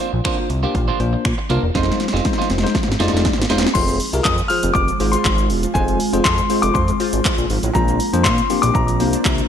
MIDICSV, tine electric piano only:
0, 0, Header, 1, 2, 480
1, 0, Start_track
1, 0, Tempo, 500000
1, 1681, Time_signature, 4, 2, 24, 8
1, 9101, End_track
2, 0, Start_track
2, 0, Title_t, "Tine electric piano"
2, 0, Program_c, 0, 4
2, 236, Note_on_c, 0, 58, 90
2, 238, Note_on_c, 0, 62, 80
2, 240, Note_on_c, 0, 65, 82
2, 240, Note_on_c, 0, 72, 94
2, 455, Note_off_c, 0, 58, 0
2, 456, Note_off_c, 0, 62, 0
2, 456, Note_off_c, 0, 65, 0
2, 457, Note_off_c, 0, 72, 0
2, 604, Note_on_c, 0, 58, 85
2, 606, Note_on_c, 0, 62, 79
2, 607, Note_on_c, 0, 65, 81
2, 609, Note_on_c, 0, 67, 98
2, 819, Note_off_c, 0, 58, 0
2, 820, Note_off_c, 0, 62, 0
2, 821, Note_off_c, 0, 65, 0
2, 822, Note_off_c, 0, 67, 0
2, 957, Note_on_c, 0, 58, 86
2, 958, Note_on_c, 0, 62, 76
2, 960, Note_on_c, 0, 65, 78
2, 961, Note_on_c, 0, 72, 91
2, 1248, Note_off_c, 0, 58, 0
2, 1249, Note_off_c, 0, 62, 0
2, 1250, Note_off_c, 0, 65, 0
2, 1250, Note_off_c, 0, 72, 0
2, 1438, Note_on_c, 0, 58, 91
2, 1439, Note_on_c, 0, 62, 82
2, 1441, Note_on_c, 0, 65, 82
2, 1442, Note_on_c, 0, 70, 100
2, 1588, Note_off_c, 0, 58, 0
2, 1589, Note_off_c, 0, 62, 0
2, 1590, Note_off_c, 0, 65, 0
2, 1590, Note_off_c, 0, 70, 0
2, 1676, Note_on_c, 0, 56, 86
2, 1678, Note_on_c, 0, 63, 75
2, 1679, Note_on_c, 0, 65, 83
2, 1681, Note_on_c, 0, 72, 93
2, 1968, Note_off_c, 0, 56, 0
2, 1969, Note_off_c, 0, 63, 0
2, 1969, Note_off_c, 0, 65, 0
2, 1970, Note_off_c, 0, 72, 0
2, 2157, Note_on_c, 0, 56, 87
2, 2158, Note_on_c, 0, 63, 80
2, 2160, Note_on_c, 0, 65, 75
2, 2162, Note_on_c, 0, 72, 92
2, 2375, Note_off_c, 0, 56, 0
2, 2376, Note_off_c, 0, 63, 0
2, 2377, Note_off_c, 0, 65, 0
2, 2378, Note_off_c, 0, 72, 0
2, 2524, Note_on_c, 0, 56, 83
2, 2525, Note_on_c, 0, 63, 77
2, 2527, Note_on_c, 0, 65, 77
2, 2529, Note_on_c, 0, 72, 99
2, 2739, Note_off_c, 0, 56, 0
2, 2740, Note_off_c, 0, 63, 0
2, 2741, Note_off_c, 0, 65, 0
2, 2742, Note_off_c, 0, 72, 0
2, 2877, Note_on_c, 0, 56, 86
2, 2878, Note_on_c, 0, 63, 78
2, 2880, Note_on_c, 0, 65, 81
2, 2882, Note_on_c, 0, 74, 96
2, 3168, Note_off_c, 0, 56, 0
2, 3169, Note_off_c, 0, 63, 0
2, 3170, Note_off_c, 0, 65, 0
2, 3171, Note_off_c, 0, 74, 0
2, 3357, Note_on_c, 0, 56, 88
2, 3359, Note_on_c, 0, 63, 83
2, 3360, Note_on_c, 0, 65, 85
2, 3362, Note_on_c, 0, 72, 100
2, 3508, Note_off_c, 0, 56, 0
2, 3509, Note_off_c, 0, 63, 0
2, 3510, Note_off_c, 0, 65, 0
2, 3511, Note_off_c, 0, 72, 0
2, 3598, Note_on_c, 0, 65, 73
2, 3600, Note_on_c, 0, 68, 69
2, 3602, Note_on_c, 0, 72, 82
2, 3816, Note_off_c, 0, 65, 0
2, 3817, Note_off_c, 0, 68, 0
2, 3818, Note_off_c, 0, 72, 0
2, 3965, Note_on_c, 0, 65, 80
2, 3968, Note_on_c, 0, 68, 71
2, 3970, Note_on_c, 0, 70, 89
2, 4180, Note_off_c, 0, 65, 0
2, 4181, Note_off_c, 0, 68, 0
2, 4182, Note_off_c, 0, 70, 0
2, 4316, Note_on_c, 0, 65, 83
2, 4319, Note_on_c, 0, 68, 71
2, 4322, Note_on_c, 0, 72, 89
2, 4608, Note_off_c, 0, 65, 0
2, 4609, Note_off_c, 0, 68, 0
2, 4610, Note_off_c, 0, 72, 0
2, 4797, Note_on_c, 0, 65, 76
2, 4800, Note_on_c, 0, 68, 71
2, 4802, Note_on_c, 0, 72, 85
2, 5232, Note_off_c, 0, 65, 0
2, 5233, Note_off_c, 0, 68, 0
2, 5234, Note_off_c, 0, 72, 0
2, 5519, Note_on_c, 0, 65, 74
2, 5521, Note_on_c, 0, 68, 70
2, 5524, Note_on_c, 0, 72, 89
2, 5736, Note_off_c, 0, 65, 0
2, 5737, Note_off_c, 0, 68, 0
2, 5739, Note_off_c, 0, 72, 0
2, 5885, Note_on_c, 0, 65, 82
2, 5888, Note_on_c, 0, 68, 76
2, 5890, Note_on_c, 0, 72, 86
2, 6100, Note_off_c, 0, 65, 0
2, 6101, Note_off_c, 0, 68, 0
2, 6102, Note_off_c, 0, 72, 0
2, 6239, Note_on_c, 0, 65, 82
2, 6241, Note_on_c, 0, 68, 75
2, 6244, Note_on_c, 0, 72, 87
2, 6529, Note_off_c, 0, 65, 0
2, 6530, Note_off_c, 0, 68, 0
2, 6532, Note_off_c, 0, 72, 0
2, 6718, Note_on_c, 0, 65, 78
2, 6720, Note_on_c, 0, 68, 69
2, 6723, Note_on_c, 0, 72, 85
2, 7152, Note_off_c, 0, 65, 0
2, 7153, Note_off_c, 0, 68, 0
2, 7155, Note_off_c, 0, 72, 0
2, 7438, Note_on_c, 0, 58, 81
2, 7440, Note_on_c, 0, 60, 72
2, 7440, Note_on_c, 0, 62, 69
2, 7442, Note_on_c, 0, 65, 73
2, 7443, Note_on_c, 0, 72, 82
2, 7656, Note_off_c, 0, 58, 0
2, 7656, Note_off_c, 0, 60, 0
2, 7657, Note_off_c, 0, 62, 0
2, 7658, Note_off_c, 0, 65, 0
2, 7658, Note_off_c, 0, 72, 0
2, 7805, Note_on_c, 0, 58, 82
2, 7806, Note_on_c, 0, 60, 73
2, 7807, Note_on_c, 0, 62, 75
2, 7808, Note_on_c, 0, 65, 78
2, 7809, Note_on_c, 0, 72, 90
2, 8020, Note_off_c, 0, 58, 0
2, 8021, Note_off_c, 0, 60, 0
2, 8021, Note_off_c, 0, 62, 0
2, 8022, Note_off_c, 0, 65, 0
2, 8022, Note_off_c, 0, 72, 0
2, 8158, Note_on_c, 0, 58, 80
2, 8160, Note_on_c, 0, 60, 72
2, 8160, Note_on_c, 0, 62, 74
2, 8162, Note_on_c, 0, 65, 75
2, 8163, Note_on_c, 0, 67, 94
2, 8449, Note_off_c, 0, 58, 0
2, 8450, Note_off_c, 0, 60, 0
2, 8450, Note_off_c, 0, 62, 0
2, 8451, Note_off_c, 0, 65, 0
2, 8451, Note_off_c, 0, 67, 0
2, 8638, Note_on_c, 0, 58, 78
2, 8639, Note_on_c, 0, 60, 72
2, 8640, Note_on_c, 0, 62, 70
2, 8642, Note_on_c, 0, 65, 71
2, 8642, Note_on_c, 0, 72, 82
2, 9072, Note_off_c, 0, 58, 0
2, 9073, Note_off_c, 0, 60, 0
2, 9073, Note_off_c, 0, 62, 0
2, 9074, Note_off_c, 0, 65, 0
2, 9074, Note_off_c, 0, 72, 0
2, 9101, End_track
0, 0, End_of_file